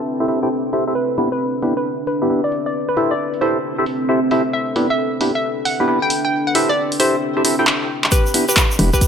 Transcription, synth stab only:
0.20 0.26 E4 medium
0.20 0.26 G4 medium
0.20 0.26 A4 medium
0.20 0.26 C5 medium
0.20 0.26 E5 medium
0.28 0.39 E4 medium
0.28 0.39 G4 medium
0.28 0.39 A4 medium
0.28 0.39 C5 medium
0.28 0.39 E5 medium
0.43 0.49 E4 medium
0.43 0.49 G4 medium
0.43 0.49 A4 medium
0.43 0.49 C5 medium
0.43 0.49 G5 loud
0.73 0.84 E4 medium
0.73 0.84 G4 medium
0.73 0.84 A4 medium
0.73 0.84 C5 medium
0.73 0.84 E5 medium
0.87 0.93 E4 medium
0.87 0.93 G4 medium
0.87 0.93 A4 medium
0.87 0.93 C5 medium
0.87 0.93 E5 medium
1.18 1.29 B3 medium
1.18 1.29 D4 medium
1.18 1.29 E4 medium
1.18 1.29 G4 medium
1.18 1.29 B4 loud
1.62 1.73 B3 medium
1.62 1.73 D4 medium
1.62 1.73 E4 medium
1.62 1.73 G4 medium
1.62 1.73 B4 medium
2.22 2.28 B3 medium
2.22 2.28 D4 medium
2.22 2.28 E4 medium
2.22 2.28 G4 medium
2.22 2.28 B4 loud
2.30 2.41 B3 medium
2.30 2.41 D4 medium
2.30 2.41 E4 medium
2.30 2.41 G4 medium
2.30 2.41 B4 medium
2.97 3.13 E4 medium
2.97 3.13 G4 medium
2.97 3.13 A4 medium
2.97 3.13 C5 medium
2.97 3.13 E5 loud
3.42 3.58 E4 medium
3.42 3.58 G4 medium
3.42 3.58 A4 medium
3.42 3.58 C5 medium
3.42 3.58 E5 loud
3.78 3.84 E4 medium
3.78 3.84 G4 medium
3.78 3.84 A4 medium
3.78 3.84 C5 medium
3.78 3.84 E5 medium
4.09 4.20 E4 medium
4.09 4.20 G4 medium
4.09 4.20 A4 medium
4.09 4.20 C5 medium
4.09 4.20 E5 medium
4.31 4.42 E4 medium
4.31 4.42 G4 medium
4.31 4.42 A4 medium
4.31 4.42 C5 medium
4.31 4.42 E5 loud
4.76 4.87 B3 medium
4.76 4.87 D4 medium
4.76 4.87 E4 medium
4.76 4.87 G4 medium
4.76 4.87 B4 loud
5.21 5.32 B3 medium
5.21 5.32 D4 medium
5.21 5.32 E4 medium
5.21 5.32 G4 medium
5.21 5.32 B4 medium
5.80 5.87 B3 medium
5.80 5.87 D4 medium
5.80 5.87 E4 medium
5.80 5.87 G4 medium
5.80 5.87 B4 loud
5.88 5.99 B3 medium
5.88 5.99 D4 medium
5.88 5.99 E4 medium
5.88 5.99 G4 medium
5.88 5.99 B4 medium
6.55 6.71 E4 medium
6.55 6.71 G4 medium
6.55 6.71 A4 medium
6.55 6.71 C5 medium
6.55 6.71 E5 loud
7.00 7.16 E4 medium
7.00 7.16 G4 medium
7.00 7.16 A4 medium
7.00 7.16 C5 medium
7.00 7.16 E5 loud
7.37 7.43 E4 medium
7.37 7.43 G4 medium
7.37 7.43 A4 medium
7.37 7.43 C5 medium
7.37 7.43 E5 medium
7.45 7.56 E4 medium
7.45 7.55 G4 medium
7.45 7.55 A4 medium
7.45 7.56 C5 medium
7.45 7.56 E5 medium
7.59 7.65 E4 medium
7.59 7.65 G4 medium
7.59 7.65 A4 medium
7.59 7.65 C5 medium
7.59 7.65 G5 loud
8.34 8.45 B3 loud
8.34 8.45 D4 medium
8.34 8.45 E4 medium
8.34 8.45 G4 medium
8.34 8.45 B4 loud
8.79 8.90 B3 medium
8.79 8.90 D4 medium
8.79 8.90 E4 medium
8.79 8.90 G4 medium
8.79 8.90 B4 loud

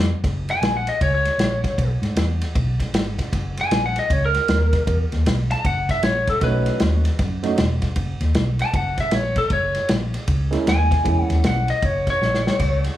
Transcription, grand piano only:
6.41 6.99 F#3 medium
6.41 7.00 A3 medium
6.41 6.99 C#4 medium
6.41 7.00 D#4 medium
7.43 7.56 F#3 medium
7.43 7.56 A3 medium
7.43 7.56 C#4 medium
7.43 7.56 D#4 medium
10.51 10.64 G#3 medium
10.51 10.65 A#3 medium
10.51 10.65 C#4 medium
10.51 10.65 E4 medium
11.04 11.63 G#3 medium
11.04 11.63 A#3 soft
11.04 11.63 C#4 soft
11.04 11.63 E4 medium

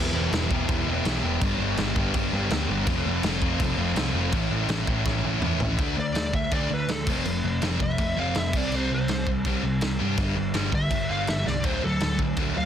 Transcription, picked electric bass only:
0.14 0.27 E1 medium
0.32 0.45 E1 medium
0.51 0.63 E1 medium
0.69 0.82 E1 medium
0.87 1.00 E1 medium
1.05 1.18 B1 medium
1.24 1.37 E1 loud
1.41 1.54 G1 loud
1.60 1.73 G1 medium
1.78 1.91 G1 loud
1.96 2.09 G1 medium
2.14 2.27 G1 medium
2.33 2.45 G1 medium
2.51 2.64 D2 medium
2.69 2.82 G1 medium
2.87 3.00 F1 loud
3.05 3.18 F1 medium
3.24 3.37 F1 loud
3.42 3.55 F1 medium
3.60 3.73 F1 loud
3.78 3.91 F1 medium
3.96 4.09 C2 medium
4.14 4.27 F1 loud
4.33 4.46 A1 loud
4.51 4.64 A1 medium
4.68 4.82 A1 loud
4.87 5.00 A1 medium
5.05 5.18 A1 medium
5.24 5.37 A1 medium
5.42 5.55 E2 medium
5.60 5.73 A1 medium
5.79 5.93 D2 loud
5.97 6.12 D2 medium
6.15 6.30 D2 medium
6.33 6.48 D2 medium
6.51 6.66 D2 medium
6.70 6.84 D2 medium
6.88 7.03 D2 medium
7.07 7.21 F1 medium
7.25 7.40 F1 loud
7.44 7.58 F1 medium
7.62 7.76 F1 medium
7.80 7.94 F1 medium
7.98 8.13 F1 medium
8.17 8.31 F1 medium
8.36 8.50 F1 medium
8.53 8.68 C2 medium
8.72 8.86 C2 loud
8.90 9.04 C2 medium
9.09 9.23 C2 medium
9.27 9.41 C2 medium
9.45 9.59 C2 medium
9.63 9.78 C2 medium
9.82 9.96 C2 medium
10.01 10.15 G2 medium
10.18 10.32 G1 medium
10.36 10.51 G1 medium
10.54 10.69 G1 medium
10.72 10.87 G1 medium
10.90 11.05 G1 medium
11.10 11.24 G1 medium
11.29 11.43 G1 medium
11.48 11.61 C2 medium
11.64 11.78 D2 medium
11.83 11.97 D2 medium
12.02 12.16 D2 loud
12.19 12.33 D2 medium
12.37 12.51 D2 medium
12.56 12.65 D2 medium

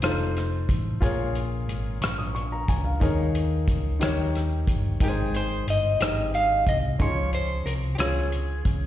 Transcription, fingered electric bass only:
0.02 0.64 F1 medium
0.69 0.99 A1 medium
1.02 1.64 A#1 medium
1.68 1.98 G#1 medium
2.01 2.64 A#1 medium
2.68 2.99 C#2 medium
3.01 3.64 D#2 medium
3.67 3.98 C#2 medium
4.01 4.63 D#2 medium
4.67 4.98 G1 medium
5.00 5.63 G#1 medium
5.67 5.98 G1 medium
6.00 6.63 G#1 medium
6.66 6.97 C2 medium
7.00 7.62 C#2 medium
7.65 7.96 C2 medium
7.99 8.61 C#2 medium
8.65 8.87 C#2 medium

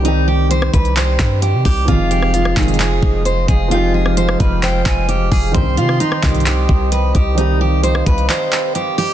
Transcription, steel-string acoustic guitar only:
0.05 0.26 D#4 medium
0.28 0.49 G4 medium
0.51 0.71 C5 medium
0.73 0.94 B4 medium
0.96 1.39 C5 medium
1.42 1.63 G4 medium
1.65 1.86 G4 medium
1.88 2.09 F4 loud
2.11 2.32 G4 medium
2.34 2.55 F4 medium
2.57 2.78 G#4 medium
2.79 3.23 G#4 medium
3.25 3.46 C5 medium
3.48 3.69 G#4 medium
3.71 3.92 F4 loud
3.94 4.15 G#4 medium
4.17 4.38 C5 medium
4.40 4.61 B4 medium
4.63 5.06 C5 medium
5.09 5.30 G4 medium
5.32 5.52 G#4 medium
5.54 5.75 C5 loud
5.77 5.98 F4 medium
6.00 6.21 D#4 medium
6.23 6.44 G4 medium
6.46 6.89 G4 medium
6.92 7.13 B4 medium
7.15 7.36 G4 medium
7.38 7.59 D#4 medium
7.61 7.82 G4 medium
7.83 8.04 C5 medium
8.06 8.27 B4 medium
8.29 8.72 C5 medium
8.75 8.96 G4 medium
8.98 9.14 G4 medium

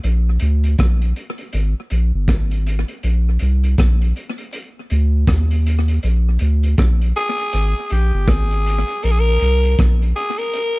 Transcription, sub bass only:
0.04 0.38 A#1 loud
0.42 0.76 D2 medium
0.79 1.13 A#1 medium
1.54 1.74 G#1 loud
1.92 2.12 A#1 loud
2.14 2.28 G1 medium
2.28 2.84 G#1 medium
3.04 3.38 A#1 loud
3.42 3.76 C2 medium
3.79 4.13 A#1 medium
4.92 5.26 D2 loud
5.28 5.99 D#2 loud
6.04 6.38 A#1 loud
6.41 6.75 D2 medium
6.79 7.13 A#1 medium
7.54 7.74 G#1 loud
7.92 8.12 A#1 loud
8.14 8.27 G1 medium
8.28 8.84 G#1 loud
9.04 9.38 A#1 loud
9.42 9.76 C2 medium
9.79 10.13 A#1 medium

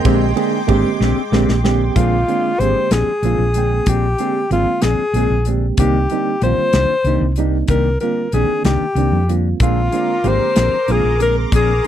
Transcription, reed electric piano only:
0.04 0.30 D3 medium
0.04 0.30 G#3 medium
0.04 0.30 A#3 medium
0.04 0.31 C4 medium
0.04 0.31 G4 loud
0.36 0.60 D3 medium
0.36 0.60 G#3 medium
0.36 0.61 A#3 medium
0.36 0.61 C4 medium
0.36 0.61 G#4 loud
0.67 1.16 D3 medium
0.67 1.17 G#3 medium
0.67 1.17 A#3 medium
0.67 1.17 C4 medium
0.67 1.17 G4 loud
1.32 1.56 D3 medium
1.32 1.57 G#3 medium
1.32 1.57 A#3 medium
1.32 1.57 C4 medium
1.32 1.57 G4 medium
1.64 1.95 D3 medium
1.64 1.96 G#3 medium
1.64 1.96 A#3 medium
1.64 1.96 C4 medium
1.64 1.96 G4 medium
1.97 2.22 D3 medium
1.97 2.22 G#3 medium
1.97 2.22 A#3 medium
1.97 2.22 C4 medium
1.97 2.22 F4 medium
2.28 2.52 D3 medium
2.28 2.52 G#3 medium
2.28 2.53 A#3 medium
2.28 2.53 C4 medium
2.28 2.53 D4 medium
2.61 3.09 D3 medium
2.61 3.09 G#3 medium
2.61 3.09 A#3 medium
2.61 3.09 C4 soft
2.61 3.10 G4 medium
3.24 3.48 D3 medium
3.24 3.48 G#3 medium
3.24 3.48 A#3 medium
3.24 3.49 C4 medium
3.24 3.49 F4 medium
3.56 4.04 D3 medium
3.56 4.04 G#3 medium
3.56 4.05 A#3 soft
3.56 4.05 C4 soft
3.56 4.05 G5 medium
4.19 4.43 D3 medium
4.19 4.43 G#3 medium
4.19 4.44 A#3 medium
4.19 4.44 C4 medium
4.19 4.44 G4 medium
4.50 4.99 D3 medium
4.50 5.00 G#3 medium
4.50 5.00 A#3 medium
4.50 5.00 C4 medium
4.50 5.00 F4 medium
5.15 5.39 D3 medium
5.15 5.40 G#3 medium
5.15 5.40 A#3 medium
5.15 5.40 C4 medium
5.15 5.40 G#4 medium
5.47 5.78 D3 medium
5.47 5.79 G#3 soft
5.47 5.78 A#3 medium
5.47 5.79 C4 soft
5.47 5.80 G4 medium
5.79 6.04 D3 medium
5.79 6.04 G3 medium
5.79 6.04 A#3 medium
5.79 6.05 C4 medium
5.79 6.05 D#4 medium
6.11 6.35 D3 medium
6.11 6.35 G3 medium
6.11 6.35 A#3 medium
6.11 6.35 C4 medium
6.11 6.35 D#4 medium
6.44 6.92 D3 medium
6.44 6.92 G3 medium
6.44 6.92 A#3 medium
6.44 6.92 C4 medium
6.44 6.93 F4 medium
7.06 7.30 D3 medium
7.06 7.31 G3 medium
7.06 7.31 A#3 medium
7.06 7.31 C4 medium
7.06 7.31 D#4 medium
7.38 7.87 G3 medium
7.38 7.87 A#3 medium
7.38 7.87 C4 medium
7.38 7.87 D4 medium
7.38 7.88 D#4 medium
8.01 8.26 D3 medium
8.01 8.26 G3 medium
8.01 8.26 A#3 medium
8.01 8.27 C4 medium
8.01 8.27 F4 medium
8.34 8.82 D3 medium
8.34 8.83 D#3 medium
8.34 8.83 A#3 medium
8.34 8.83 C4 medium
8.34 8.83 D4 medium
8.96 9.21 D3 medium
8.96 9.22 G3 soft
8.96 9.22 A#3 medium
8.96 9.22 C4 medium
8.96 9.22 D4 medium
9.29 9.59 D3 medium
9.29 9.61 G3 soft
9.29 9.61 A#3 soft
9.29 9.61 C4 soft
9.29 9.61 F4 medium
9.61 9.86 D3 medium
9.61 9.87 G#3 medium
9.61 9.87 A#3 medium
9.61 9.87 C4 medium
9.61 9.87 F4 medium
9.92 10.17 D3 medium
9.92 10.17 G#3 medium
9.92 10.18 A#3 medium
9.92 10.18 C4 medium
9.92 10.18 D4 medium
10.23 10.73 D3 medium
10.23 10.73 G#3 medium
10.23 10.73 A#3 medium
10.23 10.74 C4 medium
10.23 10.74 G4 medium
10.88 11.13 D3 medium
10.88 11.13 G#3 medium
10.88 11.13 A#3 medium
10.88 11.13 C4 medium
10.88 11.14 F4 medium
11.20 11.69 D3 soft
11.20 11.69 G#3 soft
11.20 11.69 A#3 soft
11.20 11.69 C4 medium
11.20 11.70 G#4 medium
11.84 11.87 D3 medium

